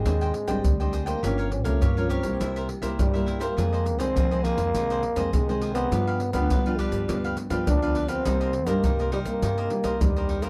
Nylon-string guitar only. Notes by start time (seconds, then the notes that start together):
0.06 G#2 C4 D4
0.47 G3 C4 D4
0.80 G3 C4 D4
1.23 G2 F3 A#3 C#4
1.65 F3 A#3 C#4
1.82 G2
1.97 F3 A#3 C#4
2.23 G3 A#3 E4
2.40 C3
2.82 G3 A#3 E4
2.99 G2
3.14 G3 A#3 E4
3.57 F2 D#3 G#3 C4
3.99 D#3 G#3 C4
4.17 C3
4.31 D#3 G#3 C4
4.57 D#3 G#3 C4
4.74 F2 D#3 G#3 C4
5.16 D#3 G#3 C4
5.33 C3
5.48 D#3 G#3 C4
5.91 G2 F3 B3 D4
6.33 F3 B3 D4
6.50 D3
6.66 F3 B3 D4
7.08 G2 F3 B3 D4
7.50 F3 B3 D4
7.67 D3
7.82 F3 B3 D4
8.25 C3 G3 A#3 D#4
8.67 G3 A#3 D#4
8.84 G2
9.12 G3 A#3 D#4
9.42 C3
9.71 G3 A#3 D#4
10.01 G2 G3 A#3 D#4